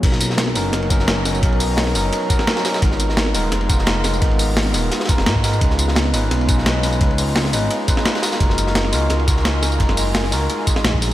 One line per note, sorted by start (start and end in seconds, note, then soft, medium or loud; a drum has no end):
0.01 0.57 B1 loud
0.01 0.52 F#3 medium
0.01 0.53 B3 medium
0.01 0.53 C#4 medium
0.01 0.54 D#4 medium
0.01 5.57 A#4 medium
0.01 2.80 C#5 medium
0.01 2.80 D#5 medium
0.01 kick loud
0.01 closed hi-hat medium
0.01 crash loud
0.01 ride medium
0.05 0.55 A#4 medium
0.12 snare medium
0.21 closed hi-hat medium
0.21 ride medium
0.21 tambourine medium
0.30 snare medium
0.38 snare loud
0.38 closed hi-hat medium
0.38 ride medium
0.47 snare soft
0.54 0.71 F#1 medium
0.54 0.88 F#3 medium
0.54 0.88 B3 medium
0.54 0.88 C#4 medium
0.54 0.89 D#4 medium
0.54 0.89 A#4 loud
0.54 open hi-hat medium
0.54 ride medium
0.54 tambourine medium
0.73 1.42 F#1 loud
0.73 snare soft
0.73 closed hi-hat medium
0.73 ride medium
0.82 ride soft
0.89 1.23 F#3 medium
0.89 1.23 B3 medium
0.89 1.23 C#4 medium
0.89 1.24 D#4 medium
0.89 1.24 A#4 loud
0.89 kick loud
0.89 closed hi-hat loud
0.89 ride medium
0.89 tambourine medium
1.00 snare soft
1.08 snare loud
1.08 closed hi-hat medium
1.08 ride medium
1.24 1.39 F#3 medium
1.24 1.41 B3 medium
1.24 1.41 C#4 medium
1.24 1.41 D#4 medium
1.24 1.41 A#4 medium
1.24 snare soft
1.24 open hi-hat medium
1.24 ride medium
1.24 tambourine medium
1.35 tambourine soft
1.40 1.97 B1 loud
1.40 1.92 F#3 medium
1.40 1.93 B3 medium
1.40 1.93 C#4 medium
1.40 1.94 D#4 medium
1.40 kick loud
1.40 closed hi-hat medium
1.40 ride medium
1.45 1.94 A#4 medium
1.52 ride soft
1.60 closed hi-hat medium
1.60 open hi-hat medium
1.60 tambourine medium
1.77 snare loud
1.77 closed hi-hat medium
1.77 ride medium
1.87 snare soft
1.94 2.11 F#1 medium
1.94 2.27 F#3 medium
1.94 2.28 B3 medium
1.94 2.28 C#4 medium
1.94 2.28 D#4 medium
1.94 2.29 A#4 loud
1.94 open hi-hat medium
1.94 ride medium
1.94 tambourine medium
2.13 closed hi-hat medium
2.13 ride medium
2.29 2.62 F#3 loud
2.29 2.63 B3 medium
2.29 2.63 C#4 medium
2.29 2.63 D#4 medium
2.29 2.64 A#4 loud
2.29 kick loud
2.29 closed hi-hat medium
2.29 ride medium
2.29 tambourine medium
2.39 snare soft
2.39 snare medium
2.47 snare loud
2.47 closed hi-hat medium
2.47 ride medium
2.56 snare loud
2.56 ride medium
2.64 2.80 F#3 medium
2.64 2.80 B3 medium
2.64 2.80 C#4 medium
2.64 2.81 D#4 medium
2.64 2.81 A#4 medium
2.64 snare loud
2.64 open hi-hat medium
2.64 ride medium
2.64 tambourine medium
2.74 snare loud
2.74 ride medium
2.74 tambourine soft
2.80 3.36 G#1 loud
2.80 3.31 G#3 medium
2.80 3.32 B3 medium
2.80 8.19 B3 medium
2.80 3.33 D#4 medium
2.80 3.33 F4 medium
2.80 11.14 F5 medium
2.80 kick loud
2.80 closed hi-hat medium
2.80 ride medium
2.85 3.34 A#4 medium
2.91 snare medium
3.00 closed hi-hat medium
3.00 ride medium
3.00 tambourine medium
3.09 snare medium
3.17 snare loud
3.17 closed hi-hat medium
3.17 ride medium
3.26 snare soft
3.33 3.50 D#1 loud
3.33 3.67 G#3 medium
3.33 3.67 B3 medium
3.33 3.68 D#4 medium
3.33 3.68 F4 medium
3.33 3.68 A#4 loud
3.33 open hi-hat medium
3.33 ride medium
3.33 tambourine medium
3.52 4.21 F1 loud
3.52 snare soft
3.52 closed hi-hat medium
3.52 ride loud
3.61 ride soft
3.68 4.02 G#3 loud
3.68 4.02 B3 medium
3.68 4.02 D#4 medium
3.68 4.03 F4 medium
3.68 4.03 A#4 loud
3.68 kick loud
3.68 closed hi-hat medium
3.68 ride medium
3.68 tambourine medium
3.79 snare soft
3.87 snare loud
3.87 closed hi-hat medium
3.87 ride medium
4.03 4.18 G#3 medium
4.03 4.20 B3 medium
4.03 4.20 D#4 medium
4.03 4.20 F4 medium
4.03 4.21 A#4 medium
4.03 snare soft
4.03 open hi-hat medium
4.03 ride medium
4.03 tambourine medium
4.14 tambourine soft
4.19 4.76 G#1 loud
4.19 4.71 G#3 medium
4.19 4.72 B3 medium
4.19 4.72 D#4 medium
4.19 4.73 F4 medium
4.19 kick loud
4.19 closed hi-hat medium
4.19 ride medium
4.24 4.73 A#4 medium
4.31 ride soft
4.39 closed hi-hat medium
4.39 open hi-hat medium
4.39 tambourine medium
4.57 snare loud
4.57 closed hi-hat medium
4.57 ride medium
4.65 snare soft
4.73 4.90 D#1 medium
4.73 5.07 G#3 medium
4.73 5.07 B3 medium
4.73 5.07 D#4 medium
4.73 5.07 F4 medium
4.73 5.08 A#4 loud
4.73 open hi-hat medium
4.73 ride medium
4.73 tambourine medium
4.91 snare loud
4.91 closed hi-hat medium
4.91 ride medium
5.00 snare medium
5.00 ride medium
5.05 5.41 G#3 loud
5.05 5.42 B3 medium
5.05 snare medium
5.05 closed hi-hat medium
5.05 ride medium
5.09 5.42 D#4 medium
5.09 5.42 F4 medium
5.09 5.43 A#4 loud
5.09 kick loud
5.09 ride medium
5.09 tambourine medium
5.18 5.28 F1 medium
5.18 snare medium
5.26 5.60 G#2 medium
5.26 snare loud
5.26 closed hi-hat medium
5.26 ride medium
5.36 kick medium
5.43 5.58 G#3 medium
5.43 5.59 B3 medium
5.43 5.59 D#4 medium
5.43 5.60 F4 medium
5.43 5.60 A#4 medium
5.43 snare soft
5.43 open hi-hat medium
5.43 ride medium
5.43 tambourine medium
5.53 tambourine soft
5.59 6.15 C#2 loud
5.59 6.10 G#3 medium
5.59 6.11 C#4 medium
5.59 6.12 D#4 medium
5.59 6.12 F4 medium
5.59 11.14 D#5 medium
5.59 kick loud
5.59 closed hi-hat medium
5.59 ride medium
5.64 6.13 B4 medium
5.71 snare soft
5.79 closed hi-hat medium
5.79 ride medium
5.79 tambourine medium
5.88 snare medium
5.96 snare loud
5.96 closed hi-hat medium
5.96 ride medium
6.05 snare soft
6.13 6.30 G#1 medium
6.13 6.46 G#3 medium
6.13 6.46 C#4 medium
6.13 6.47 D#4 medium
6.13 6.47 F4 medium
6.13 6.47 B4 loud
6.13 open hi-hat medium
6.13 ride medium
6.13 tambourine medium
6.31 7.00 B1 loud
6.31 snare soft
6.31 closed hi-hat medium
6.31 ride medium
6.41 ride soft
6.47 6.81 G#3 loud
6.47 6.81 C#4 medium
6.47 6.82 D#4 medium
6.47 6.82 F4 medium
6.47 6.82 B4 loud
6.47 kick loud
6.47 closed hi-hat medium
6.47 ride medium
6.47 tambourine medium
6.58 snare soft
6.66 snare loud
6.66 closed hi-hat medium
6.66 ride medium
6.82 6.97 G#3 medium
6.82 6.99 C#4 medium
6.82 6.99 D#4 medium
6.82 6.99 F4 medium
6.82 7.00 B4 medium
6.82 snare soft
6.82 open hi-hat medium
6.82 ride medium
6.82 tambourine medium
6.92 tambourine soft
6.98 7.55 C#2 loud
6.98 7.50 G#3 medium
6.98 7.51 C#4 medium
6.98 7.51 D#4 medium
6.98 7.52 F4 medium
6.98 kick loud
6.98 closed hi-hat medium
6.98 ride medium
7.03 7.53 B4 medium
7.11 ride soft
7.18 closed hi-hat medium
7.18 open hi-hat medium
7.18 tambourine medium
7.36 snare loud
7.36 closed hi-hat medium
7.36 ride medium
7.45 snare soft
7.52 7.69 G#1 loud
7.52 7.86 G#3 medium
7.52 7.86 C#4 medium
7.52 7.86 D#4 medium
7.52 7.87 F4 medium
7.52 7.87 B4 loud
7.52 open hi-hat medium
7.52 ride medium
7.52 tambourine medium
7.71 closed hi-hat medium
7.71 ride medium
7.87 8.21 G#3 loud
7.87 8.21 C#4 medium
7.87 8.21 D#4 medium
7.87 8.21 F4 medium
7.87 8.22 B4 loud
7.87 kick loud
7.87 closed hi-hat medium
7.87 ride medium
7.87 tambourine medium
7.97 snare soft
7.97 snare medium
8.06 snare loud
8.06 closed hi-hat medium
8.06 ride medium
8.15 snare loud
8.15 ride medium
8.22 8.37 G#3 medium
8.22 8.38 D#4 medium
8.22 8.39 F4 medium
8.22 8.39 F#4 medium
8.22 11.14 A#4 medium
8.22 8.39 A#4 medium
8.22 11.14 G#5 medium
8.22 snare loud
8.22 open hi-hat medium
8.22 ride medium
8.22 tambourine medium
8.32 snare medium
8.32 ride medium
8.32 tambourine soft
8.38 8.95 F#1 loud
8.38 8.90 G#3 medium
8.38 8.90 D#4 medium
8.38 8.91 F4 medium
8.38 8.92 F#4 medium
8.38 kick loud
8.38 closed hi-hat medium
8.38 ride medium
8.43 8.92 A#4 loud
8.50 snare medium
8.58 closed hi-hat medium
8.58 ride medium
8.58 tambourine medium
8.67 snare medium
8.75 snare loud
8.75 closed hi-hat medium
8.75 ride medium
8.84 snare soft
8.92 9.09 C#2 loud
8.92 9.25 G#3 medium
8.92 9.26 D#4 medium
8.92 9.26 F4 medium
8.92 9.26 F#4 medium
8.92 9.26 A#4 loud
8.92 open hi-hat medium
8.92 tambourine medium
9.10 9.79 C#2 loud
9.10 snare soft
9.10 closed hi-hat medium
9.10 ride medium
9.19 ride soft
9.27 9.60 G#3 loud
9.27 9.60 D#4 medium
9.27 9.61 F4 medium
9.27 9.61 F#4 medium
9.27 9.61 A#4 loud
9.27 kick loud
9.27 closed hi-hat loud
9.27 ride medium
9.27 tambourine medium
9.37 snare soft
9.45 snare loud
9.45 closed hi-hat medium
9.45 ride medium
9.61 9.76 G#3 medium
9.61 9.78 D#4 medium
9.61 9.78 F4 medium
9.61 9.78 F#4 medium
9.61 9.79 A#4 medium
9.61 snare soft
9.61 open hi-hat medium
9.61 ride medium
9.61 tambourine medium
9.72 tambourine soft
9.78 10.34 F#1 loud
9.78 10.29 G#3 medium
9.78 10.30 D#4 medium
9.78 10.30 F4 medium
9.78 10.31 F#4 medium
9.78 kick loud
9.78 closed hi-hat medium
9.78 ride medium
9.82 10.32 A#4 loud
9.89 snare medium
9.89 ride soft
9.97 closed hi-hat loud
9.97 open hi-hat medium
9.97 tambourine medium
10.15 snare loud
10.15 closed hi-hat medium
10.15 ride medium
10.24 snare soft
10.31 10.48 C#2 medium
10.31 10.64 G#3 medium
10.31 10.65 D#4 medium
10.31 10.65 F4 medium
10.31 10.66 F#4 medium
10.31 10.66 A#4 loud
10.31 open hi-hat medium
10.31 ride medium
10.31 tambourine medium
10.50 closed hi-hat medium
10.50 ride medium
10.50 tambourine soft
10.65 11.14 G#3 medium
10.65 11.14 D#4 medium
10.65 11.14 F4 medium
10.65 11.14 F#4 medium
10.65 kick loud
10.65 closed hi-hat loud
10.65 ride medium
10.65 tambourine medium
10.70 11.14 G#4 medium
10.76 snare soft
10.76 snare medium
10.85 11.14 A#1 medium
10.85 snare loud
10.85 closed hi-hat medium
10.85 ride medium
10.94 kick medium
11.02 snare soft
11.02 open hi-hat medium
11.02 ride medium
11.02 tambourine medium